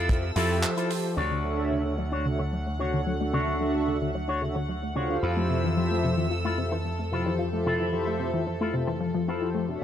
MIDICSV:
0, 0, Header, 1, 8, 480
1, 0, Start_track
1, 0, Tempo, 540541
1, 1042, Time_signature, 4, 2, 24, 8
1, 8735, End_track
2, 0, Start_track
2, 0, Title_t, "Violin section"
2, 0, Program_c, 0, 48
2, 0, Note_on_c, 0, 69, 77
2, 0, Note_on_c, 0, 88, 88
2, 1006, Note_off_c, 0, 88, 0
2, 1007, Note_off_c, 0, 69, 0
2, 1043, Note_on_c, 0, 78, 57
2, 4607, Note_off_c, 0, 78, 0
2, 4645, Note_on_c, 0, 88, 80
2, 4647, Note_on_c, 0, 69, 72
2, 6544, Note_off_c, 0, 88, 0
2, 8689, Note_off_c, 0, 69, 0
2, 8735, End_track
3, 0, Start_track
3, 0, Title_t, "Analog polysynth"
3, 0, Program_c, 1, 90
3, 77, Note_on_c, 1, 65, 90
3, 80, Note_on_c, 1, 67, 79
3, 82, Note_on_c, 1, 69, 79
3, 85, Note_on_c, 1, 72, 80
3, 87, Note_on_c, 1, 76, 99
3, 211, Note_off_c, 1, 65, 0
3, 212, Note_off_c, 1, 67, 0
3, 214, Note_off_c, 1, 69, 0
3, 215, Note_off_c, 1, 72, 0
3, 216, Note_off_c, 1, 76, 0
3, 315, Note_on_c, 1, 53, 100
3, 318, Note_on_c, 1, 67, 89
3, 320, Note_on_c, 1, 69, 91
3, 321, Note_on_c, 1, 72, 96
3, 323, Note_on_c, 1, 76, 115
3, 653, Note_off_c, 1, 53, 0
3, 654, Note_off_c, 1, 67, 0
3, 655, Note_off_c, 1, 69, 0
3, 656, Note_off_c, 1, 72, 0
3, 656, Note_off_c, 1, 76, 0
3, 678, Note_on_c, 1, 53, 84
3, 681, Note_on_c, 1, 67, 80
3, 685, Note_on_c, 1, 69, 78
3, 686, Note_on_c, 1, 72, 79
3, 1024, Note_off_c, 1, 53, 0
3, 1025, Note_off_c, 1, 67, 0
3, 1027, Note_off_c, 1, 69, 0
3, 1028, Note_off_c, 1, 72, 0
3, 1272, Note_on_c, 1, 62, 93
3, 1273, Note_on_c, 1, 66, 83
3, 1275, Note_on_c, 1, 69, 83
3, 1278, Note_on_c, 1, 73, 82
3, 1279, Note_on_c, 1, 76, 102
3, 1611, Note_off_c, 1, 62, 0
3, 1611, Note_off_c, 1, 66, 0
3, 1612, Note_off_c, 1, 69, 0
3, 1614, Note_off_c, 1, 73, 0
3, 1615, Note_off_c, 1, 76, 0
3, 1641, Note_on_c, 1, 62, 76
3, 1641, Note_on_c, 1, 66, 70
3, 1645, Note_on_c, 1, 69, 71
3, 1645, Note_on_c, 1, 73, 70
3, 1647, Note_on_c, 1, 76, 80
3, 1721, Note_off_c, 1, 62, 0
3, 1721, Note_off_c, 1, 66, 0
3, 1723, Note_off_c, 1, 69, 0
3, 1723, Note_off_c, 1, 73, 0
3, 1724, Note_off_c, 1, 76, 0
3, 1993, Note_on_c, 1, 62, 82
3, 1995, Note_on_c, 1, 66, 74
3, 1997, Note_on_c, 1, 69, 75
3, 1999, Note_on_c, 1, 73, 74
3, 2001, Note_on_c, 1, 76, 86
3, 2129, Note_off_c, 1, 62, 0
3, 2130, Note_off_c, 1, 66, 0
3, 2131, Note_off_c, 1, 69, 0
3, 2132, Note_off_c, 1, 73, 0
3, 2133, Note_off_c, 1, 76, 0
3, 2476, Note_on_c, 1, 62, 72
3, 2477, Note_on_c, 1, 66, 62
3, 2479, Note_on_c, 1, 69, 65
3, 2480, Note_on_c, 1, 73, 64
3, 2486, Note_on_c, 1, 78, 74
3, 2813, Note_off_c, 1, 62, 0
3, 2813, Note_off_c, 1, 66, 0
3, 2815, Note_off_c, 1, 69, 0
3, 2815, Note_off_c, 1, 73, 0
3, 2818, Note_off_c, 1, 78, 0
3, 2838, Note_on_c, 1, 62, 77
3, 2842, Note_on_c, 1, 66, 69
3, 2848, Note_on_c, 1, 85, 67
3, 2849, Note_on_c, 1, 76, 82
3, 3170, Note_off_c, 1, 62, 0
3, 3172, Note_off_c, 1, 66, 0
3, 3175, Note_off_c, 1, 76, 0
3, 3175, Note_off_c, 1, 85, 0
3, 3194, Note_on_c, 1, 62, 94
3, 3197, Note_on_c, 1, 66, 87
3, 3198, Note_on_c, 1, 69, 83
3, 3201, Note_on_c, 1, 85, 86
3, 3203, Note_on_c, 1, 76, 100
3, 3532, Note_off_c, 1, 62, 0
3, 3534, Note_off_c, 1, 66, 0
3, 3534, Note_off_c, 1, 69, 0
3, 3535, Note_off_c, 1, 85, 0
3, 3536, Note_off_c, 1, 76, 0
3, 3563, Note_on_c, 1, 66, 72
3, 3569, Note_on_c, 1, 76, 89
3, 3642, Note_off_c, 1, 66, 0
3, 3645, Note_off_c, 1, 76, 0
3, 3917, Note_on_c, 1, 62, 80
3, 3918, Note_on_c, 1, 66, 75
3, 3922, Note_on_c, 1, 69, 74
3, 3924, Note_on_c, 1, 73, 72
3, 3926, Note_on_c, 1, 76, 88
3, 4051, Note_off_c, 1, 62, 0
3, 4052, Note_off_c, 1, 66, 0
3, 4054, Note_off_c, 1, 69, 0
3, 4055, Note_off_c, 1, 73, 0
3, 4056, Note_off_c, 1, 76, 0
3, 4395, Note_on_c, 1, 65, 74
3, 4397, Note_on_c, 1, 67, 67
3, 4399, Note_on_c, 1, 69, 62
3, 4401, Note_on_c, 1, 72, 66
3, 4404, Note_on_c, 1, 77, 81
3, 4732, Note_off_c, 1, 65, 0
3, 4733, Note_off_c, 1, 67, 0
3, 4734, Note_off_c, 1, 69, 0
3, 4736, Note_off_c, 1, 72, 0
3, 4737, Note_off_c, 1, 77, 0
3, 4764, Note_on_c, 1, 53, 77
3, 4768, Note_on_c, 1, 67, 66
3, 4770, Note_on_c, 1, 72, 69
3, 4771, Note_on_c, 1, 69, 69
3, 4774, Note_on_c, 1, 76, 79
3, 5093, Note_off_c, 1, 53, 0
3, 5095, Note_off_c, 1, 67, 0
3, 5096, Note_off_c, 1, 69, 0
3, 5096, Note_off_c, 1, 72, 0
3, 5098, Note_off_c, 1, 76, 0
3, 5118, Note_on_c, 1, 53, 97
3, 5121, Note_on_c, 1, 67, 83
3, 5123, Note_on_c, 1, 69, 86
3, 5125, Note_on_c, 1, 72, 85
3, 5130, Note_on_c, 1, 76, 104
3, 5454, Note_off_c, 1, 53, 0
3, 5456, Note_off_c, 1, 67, 0
3, 5456, Note_off_c, 1, 69, 0
3, 5457, Note_off_c, 1, 72, 0
3, 5460, Note_off_c, 1, 76, 0
3, 5480, Note_on_c, 1, 65, 77
3, 5485, Note_on_c, 1, 67, 71
3, 5487, Note_on_c, 1, 69, 68
3, 5488, Note_on_c, 1, 72, 75
3, 5490, Note_on_c, 1, 76, 84
3, 5560, Note_off_c, 1, 65, 0
3, 5563, Note_off_c, 1, 67, 0
3, 5564, Note_off_c, 1, 69, 0
3, 5564, Note_off_c, 1, 72, 0
3, 5565, Note_off_c, 1, 76, 0
3, 5844, Note_on_c, 1, 65, 81
3, 5845, Note_on_c, 1, 67, 74
3, 5848, Note_on_c, 1, 69, 70
3, 5851, Note_on_c, 1, 72, 70
3, 5851, Note_on_c, 1, 76, 89
3, 5975, Note_off_c, 1, 65, 0
3, 5975, Note_off_c, 1, 67, 0
3, 5977, Note_off_c, 1, 69, 0
3, 5978, Note_off_c, 1, 72, 0
3, 5978, Note_off_c, 1, 76, 0
3, 6316, Note_on_c, 1, 53, 75
3, 6318, Note_on_c, 1, 67, 65
3, 6321, Note_on_c, 1, 69, 66
3, 6323, Note_on_c, 1, 72, 65
3, 6653, Note_off_c, 1, 53, 0
3, 6654, Note_off_c, 1, 67, 0
3, 6656, Note_off_c, 1, 69, 0
3, 6656, Note_off_c, 1, 72, 0
3, 6680, Note_on_c, 1, 53, 76
3, 6683, Note_on_c, 1, 67, 67
3, 6685, Note_on_c, 1, 69, 73
3, 6687, Note_on_c, 1, 72, 68
3, 6689, Note_on_c, 1, 76, 78
3, 7011, Note_off_c, 1, 53, 0
3, 7013, Note_off_c, 1, 67, 0
3, 7014, Note_off_c, 1, 69, 0
3, 7015, Note_off_c, 1, 72, 0
3, 7015, Note_off_c, 1, 76, 0
3, 7037, Note_on_c, 1, 53, 94
3, 7039, Note_on_c, 1, 67, 85
3, 7040, Note_on_c, 1, 69, 88
3, 7043, Note_on_c, 1, 72, 88
3, 7044, Note_on_c, 1, 76, 105
3, 7373, Note_off_c, 1, 53, 0
3, 7374, Note_off_c, 1, 67, 0
3, 7375, Note_off_c, 1, 69, 0
3, 7376, Note_off_c, 1, 72, 0
3, 7377, Note_off_c, 1, 76, 0
3, 7400, Note_on_c, 1, 65, 77
3, 7401, Note_on_c, 1, 67, 68
3, 7405, Note_on_c, 1, 69, 73
3, 7405, Note_on_c, 1, 72, 72
3, 7407, Note_on_c, 1, 76, 85
3, 7480, Note_off_c, 1, 65, 0
3, 7481, Note_off_c, 1, 67, 0
3, 7483, Note_off_c, 1, 69, 0
3, 7483, Note_off_c, 1, 72, 0
3, 7484, Note_off_c, 1, 76, 0
3, 7754, Note_on_c, 1, 65, 82
3, 7756, Note_on_c, 1, 67, 74
3, 7759, Note_on_c, 1, 69, 76
3, 7763, Note_on_c, 1, 72, 78
3, 7764, Note_on_c, 1, 76, 88
3, 7890, Note_off_c, 1, 65, 0
3, 7890, Note_off_c, 1, 67, 0
3, 7892, Note_off_c, 1, 69, 0
3, 7894, Note_off_c, 1, 72, 0
3, 7894, Note_off_c, 1, 76, 0
3, 8234, Note_on_c, 1, 53, 73
3, 8238, Note_on_c, 1, 67, 63
3, 8238, Note_on_c, 1, 69, 66
3, 8240, Note_on_c, 1, 72, 63
3, 8572, Note_off_c, 1, 53, 0
3, 8574, Note_off_c, 1, 67, 0
3, 8574, Note_off_c, 1, 69, 0
3, 8575, Note_off_c, 1, 72, 0
3, 8594, Note_on_c, 1, 62, 76
3, 8597, Note_on_c, 1, 69, 65
3, 8598, Note_on_c, 1, 66, 68
3, 8601, Note_on_c, 1, 73, 69
3, 8601, Note_on_c, 1, 76, 85
3, 8735, Note_off_c, 1, 62, 0
3, 8735, Note_off_c, 1, 66, 0
3, 8735, Note_off_c, 1, 69, 0
3, 8735, Note_off_c, 1, 73, 0
3, 8735, Note_off_c, 1, 76, 0
3, 8735, End_track
4, 0, Start_track
4, 0, Title_t, "Clean electric guitar"
4, 0, Program_c, 2, 27
4, 0, Note_on_c, 2, 64, 72
4, 0, Note_on_c, 2, 65, 81
4, 0, Note_on_c, 2, 69, 93
4, 139, Note_off_c, 2, 64, 0
4, 141, Note_off_c, 2, 65, 0
4, 143, Note_off_c, 2, 69, 0
4, 317, Note_on_c, 2, 65, 107
4, 318, Note_on_c, 2, 64, 101
4, 321, Note_on_c, 2, 69, 117
4, 500, Note_off_c, 2, 64, 0
4, 502, Note_off_c, 2, 65, 0
4, 503, Note_off_c, 2, 69, 0
4, 683, Note_on_c, 2, 65, 78
4, 685, Note_on_c, 2, 64, 83
4, 687, Note_on_c, 2, 69, 91
4, 800, Note_off_c, 2, 64, 0
4, 801, Note_off_c, 2, 65, 0
4, 802, Note_off_c, 2, 69, 0
4, 1033, Note_on_c, 2, 62, 96
4, 1037, Note_on_c, 2, 66, 83
4, 1043, Note_on_c, 2, 73, 90
4, 1401, Note_off_c, 2, 62, 0
4, 1404, Note_off_c, 2, 66, 0
4, 1405, Note_off_c, 2, 73, 0
4, 1879, Note_on_c, 2, 62, 78
4, 1883, Note_on_c, 2, 66, 68
4, 1887, Note_on_c, 2, 73, 81
4, 1998, Note_off_c, 2, 62, 0
4, 2000, Note_off_c, 2, 66, 0
4, 2002, Note_off_c, 2, 73, 0
4, 2479, Note_on_c, 2, 62, 74
4, 2482, Note_on_c, 2, 66, 68
4, 2488, Note_on_c, 2, 73, 79
4, 2662, Note_off_c, 2, 62, 0
4, 2665, Note_off_c, 2, 66, 0
4, 2665, Note_off_c, 2, 73, 0
4, 2955, Note_on_c, 2, 62, 93
4, 2959, Note_on_c, 2, 66, 86
4, 2966, Note_on_c, 2, 73, 89
4, 3322, Note_off_c, 2, 62, 0
4, 3324, Note_off_c, 2, 66, 0
4, 3326, Note_off_c, 2, 73, 0
4, 3799, Note_on_c, 2, 62, 75
4, 3803, Note_on_c, 2, 66, 69
4, 3807, Note_on_c, 2, 73, 83
4, 3918, Note_off_c, 2, 62, 0
4, 3920, Note_off_c, 2, 66, 0
4, 3922, Note_off_c, 2, 73, 0
4, 4397, Note_on_c, 2, 62, 78
4, 4400, Note_on_c, 2, 66, 70
4, 4407, Note_on_c, 2, 73, 80
4, 4581, Note_off_c, 2, 62, 0
4, 4584, Note_off_c, 2, 66, 0
4, 4584, Note_off_c, 2, 73, 0
4, 4641, Note_on_c, 2, 65, 70
4, 4643, Note_on_c, 2, 64, 70
4, 4646, Note_on_c, 2, 69, 87
4, 5410, Note_off_c, 2, 64, 0
4, 5412, Note_off_c, 2, 65, 0
4, 5413, Note_off_c, 2, 69, 0
4, 5724, Note_on_c, 2, 64, 77
4, 5727, Note_on_c, 2, 65, 76
4, 5733, Note_on_c, 2, 69, 71
4, 5841, Note_off_c, 2, 64, 0
4, 5843, Note_off_c, 2, 65, 0
4, 5844, Note_off_c, 2, 69, 0
4, 6325, Note_on_c, 2, 65, 74
4, 6326, Note_on_c, 2, 64, 70
4, 6331, Note_on_c, 2, 69, 86
4, 6504, Note_off_c, 2, 64, 0
4, 6506, Note_off_c, 2, 65, 0
4, 6508, Note_off_c, 2, 69, 0
4, 6804, Note_on_c, 2, 64, 94
4, 6807, Note_on_c, 2, 65, 86
4, 6814, Note_on_c, 2, 69, 89
4, 7167, Note_off_c, 2, 64, 0
4, 7169, Note_off_c, 2, 65, 0
4, 7170, Note_off_c, 2, 69, 0
4, 7641, Note_on_c, 2, 64, 77
4, 7645, Note_on_c, 2, 65, 74
4, 7651, Note_on_c, 2, 69, 76
4, 7759, Note_off_c, 2, 64, 0
4, 7761, Note_off_c, 2, 65, 0
4, 7763, Note_off_c, 2, 69, 0
4, 8242, Note_on_c, 2, 64, 61
4, 8242, Note_on_c, 2, 65, 69
4, 8245, Note_on_c, 2, 69, 84
4, 8422, Note_off_c, 2, 64, 0
4, 8424, Note_off_c, 2, 65, 0
4, 8425, Note_off_c, 2, 69, 0
4, 8735, End_track
5, 0, Start_track
5, 0, Title_t, "Synth arpeggio sound"
5, 0, Program_c, 3, 84
5, 1039, Note_on_c, 3, 49, 94
5, 1074, Note_off_c, 3, 49, 0
5, 1162, Note_on_c, 3, 50, 92
5, 1244, Note_off_c, 3, 50, 0
5, 1280, Note_on_c, 3, 54, 72
5, 1366, Note_off_c, 3, 54, 0
5, 1403, Note_on_c, 3, 57, 75
5, 1457, Note_off_c, 3, 57, 0
5, 1520, Note_on_c, 3, 49, 80
5, 1577, Note_off_c, 3, 49, 0
5, 1644, Note_on_c, 3, 50, 92
5, 1698, Note_off_c, 3, 50, 0
5, 1760, Note_on_c, 3, 54, 95
5, 1818, Note_off_c, 3, 54, 0
5, 1886, Note_on_c, 3, 57, 68
5, 1918, Note_off_c, 3, 57, 0
5, 2003, Note_on_c, 3, 49, 92
5, 2036, Note_off_c, 3, 49, 0
5, 2126, Note_on_c, 3, 50, 93
5, 2206, Note_off_c, 3, 50, 0
5, 2243, Note_on_c, 3, 54, 70
5, 2328, Note_off_c, 3, 54, 0
5, 2365, Note_on_c, 3, 57, 73
5, 2418, Note_off_c, 3, 57, 0
5, 2484, Note_on_c, 3, 49, 80
5, 2540, Note_off_c, 3, 49, 0
5, 2608, Note_on_c, 3, 50, 92
5, 2660, Note_off_c, 3, 50, 0
5, 2723, Note_on_c, 3, 54, 95
5, 2779, Note_off_c, 3, 54, 0
5, 2848, Note_on_c, 3, 57, 73
5, 2878, Note_off_c, 3, 57, 0
5, 2962, Note_on_c, 3, 49, 98
5, 2996, Note_off_c, 3, 49, 0
5, 3087, Note_on_c, 3, 50, 91
5, 3166, Note_off_c, 3, 50, 0
5, 3204, Note_on_c, 3, 54, 66
5, 3288, Note_off_c, 3, 54, 0
5, 3327, Note_on_c, 3, 57, 73
5, 3380, Note_off_c, 3, 57, 0
5, 3442, Note_on_c, 3, 49, 84
5, 3499, Note_off_c, 3, 49, 0
5, 3566, Note_on_c, 3, 50, 98
5, 3619, Note_off_c, 3, 50, 0
5, 3685, Note_on_c, 3, 54, 93
5, 3740, Note_off_c, 3, 54, 0
5, 3807, Note_on_c, 3, 57, 67
5, 3838, Note_off_c, 3, 57, 0
5, 3923, Note_on_c, 3, 49, 97
5, 3957, Note_off_c, 3, 49, 0
5, 4048, Note_on_c, 3, 50, 98
5, 4126, Note_off_c, 3, 50, 0
5, 4163, Note_on_c, 3, 54, 67
5, 4247, Note_off_c, 3, 54, 0
5, 4290, Note_on_c, 3, 57, 68
5, 4341, Note_off_c, 3, 57, 0
5, 4403, Note_on_c, 3, 49, 76
5, 4459, Note_off_c, 3, 49, 0
5, 4527, Note_on_c, 3, 50, 93
5, 4579, Note_off_c, 3, 50, 0
5, 4642, Note_on_c, 3, 53, 99
5, 4698, Note_off_c, 3, 53, 0
5, 4765, Note_on_c, 3, 57, 78
5, 4797, Note_off_c, 3, 57, 0
5, 4882, Note_on_c, 3, 48, 96
5, 4916, Note_off_c, 3, 48, 0
5, 5007, Note_on_c, 3, 52, 96
5, 5086, Note_off_c, 3, 52, 0
5, 5125, Note_on_c, 3, 53, 69
5, 5208, Note_off_c, 3, 53, 0
5, 5248, Note_on_c, 3, 57, 71
5, 5300, Note_off_c, 3, 57, 0
5, 5364, Note_on_c, 3, 48, 84
5, 5420, Note_off_c, 3, 48, 0
5, 5485, Note_on_c, 3, 52, 94
5, 5538, Note_off_c, 3, 52, 0
5, 5602, Note_on_c, 3, 53, 98
5, 5659, Note_off_c, 3, 53, 0
5, 5728, Note_on_c, 3, 57, 68
5, 5759, Note_off_c, 3, 57, 0
5, 5843, Note_on_c, 3, 48, 100
5, 5876, Note_off_c, 3, 48, 0
5, 5968, Note_on_c, 3, 52, 97
5, 6047, Note_off_c, 3, 52, 0
5, 6084, Note_on_c, 3, 53, 68
5, 6168, Note_off_c, 3, 53, 0
5, 6210, Note_on_c, 3, 57, 71
5, 6261, Note_off_c, 3, 57, 0
5, 6321, Note_on_c, 3, 48, 78
5, 6378, Note_off_c, 3, 48, 0
5, 6447, Note_on_c, 3, 52, 93
5, 6499, Note_off_c, 3, 52, 0
5, 6560, Note_on_c, 3, 53, 104
5, 6618, Note_off_c, 3, 53, 0
5, 6686, Note_on_c, 3, 57, 77
5, 6718, Note_off_c, 3, 57, 0
5, 6804, Note_on_c, 3, 48, 94
5, 6837, Note_off_c, 3, 48, 0
5, 6926, Note_on_c, 3, 52, 90
5, 7006, Note_off_c, 3, 52, 0
5, 7041, Note_on_c, 3, 53, 67
5, 7126, Note_off_c, 3, 53, 0
5, 7167, Note_on_c, 3, 57, 73
5, 7219, Note_off_c, 3, 57, 0
5, 7278, Note_on_c, 3, 48, 84
5, 7337, Note_off_c, 3, 48, 0
5, 7402, Note_on_c, 3, 52, 93
5, 7457, Note_off_c, 3, 52, 0
5, 7520, Note_on_c, 3, 53, 94
5, 7577, Note_off_c, 3, 53, 0
5, 7644, Note_on_c, 3, 57, 65
5, 7676, Note_off_c, 3, 57, 0
5, 7759, Note_on_c, 3, 48, 98
5, 7794, Note_off_c, 3, 48, 0
5, 7884, Note_on_c, 3, 52, 94
5, 7964, Note_off_c, 3, 52, 0
5, 7997, Note_on_c, 3, 53, 94
5, 8056, Note_off_c, 3, 53, 0
5, 8121, Note_on_c, 3, 53, 98
5, 8177, Note_off_c, 3, 53, 0
5, 8240, Note_on_c, 3, 60, 78
5, 8298, Note_off_c, 3, 60, 0
5, 8362, Note_on_c, 3, 64, 70
5, 8417, Note_off_c, 3, 64, 0
5, 8476, Note_on_c, 3, 57, 97
5, 8513, Note_off_c, 3, 57, 0
5, 8600, Note_on_c, 3, 48, 76
5, 8682, Note_off_c, 3, 48, 0
5, 8735, End_track
6, 0, Start_track
6, 0, Title_t, "Slap bass"
6, 0, Program_c, 4, 36
6, 0, Note_on_c, 4, 41, 81
6, 278, Note_off_c, 4, 41, 0
6, 318, Note_on_c, 4, 41, 95
6, 560, Note_off_c, 4, 41, 0
6, 1039, Note_on_c, 4, 38, 79
6, 4617, Note_off_c, 4, 38, 0
6, 4642, Note_on_c, 4, 41, 76
6, 8699, Note_off_c, 4, 41, 0
6, 8735, End_track
7, 0, Start_track
7, 0, Title_t, "Muted clean electric guitar strokes"
7, 919, Note_on_c, 9, 29, 30
7, 1008, Note_off_c, 9, 29, 0
7, 1755, Note_on_c, 9, 29, 75
7, 1844, Note_off_c, 9, 29, 0
7, 2120, Note_on_c, 9, 29, 90
7, 2209, Note_off_c, 9, 29, 0
7, 2239, Note_on_c, 9, 29, 28
7, 2328, Note_off_c, 9, 29, 0
7, 2363, Note_on_c, 9, 29, 29
7, 2452, Note_off_c, 9, 29, 0
7, 2843, Note_on_c, 9, 29, 29
7, 2931, Note_off_c, 9, 29, 0
7, 3678, Note_on_c, 9, 29, 72
7, 3767, Note_off_c, 9, 29, 0
7, 4041, Note_on_c, 9, 29, 92
7, 4129, Note_off_c, 9, 29, 0
7, 4158, Note_on_c, 9, 29, 29
7, 4247, Note_off_c, 9, 29, 0
7, 4281, Note_on_c, 9, 29, 29
7, 4370, Note_off_c, 9, 29, 0
7, 5597, Note_on_c, 9, 29, 73
7, 5685, Note_off_c, 9, 29, 0
7, 5962, Note_on_c, 9, 29, 94
7, 6051, Note_off_c, 9, 29, 0
7, 6083, Note_on_c, 9, 29, 28
7, 6171, Note_off_c, 9, 29, 0
7, 6205, Note_on_c, 9, 29, 30
7, 6294, Note_off_c, 9, 29, 0
7, 6686, Note_on_c, 9, 29, 28
7, 6775, Note_off_c, 9, 29, 0
7, 7520, Note_on_c, 9, 29, 75
7, 7609, Note_off_c, 9, 29, 0
7, 7880, Note_on_c, 9, 29, 92
7, 7969, Note_off_c, 9, 29, 0
7, 8000, Note_on_c, 9, 29, 28
7, 8089, Note_off_c, 9, 29, 0
7, 8121, Note_on_c, 9, 29, 29
7, 8210, Note_off_c, 9, 29, 0
7, 8604, Note_on_c, 9, 29, 29
7, 8693, Note_off_c, 9, 29, 0
7, 8735, End_track
8, 0, Start_track
8, 0, Title_t, "Drums"
8, 83, Note_on_c, 9, 36, 108
8, 89, Note_on_c, 9, 42, 88
8, 172, Note_off_c, 9, 36, 0
8, 178, Note_off_c, 9, 42, 0
8, 320, Note_on_c, 9, 46, 107
8, 408, Note_off_c, 9, 46, 0
8, 563, Note_on_c, 9, 39, 123
8, 563, Note_on_c, 9, 42, 84
8, 652, Note_off_c, 9, 39, 0
8, 652, Note_off_c, 9, 42, 0
8, 689, Note_on_c, 9, 42, 50
8, 778, Note_off_c, 9, 42, 0
8, 804, Note_on_c, 9, 46, 102
8, 893, Note_off_c, 9, 46, 0
8, 8735, End_track
0, 0, End_of_file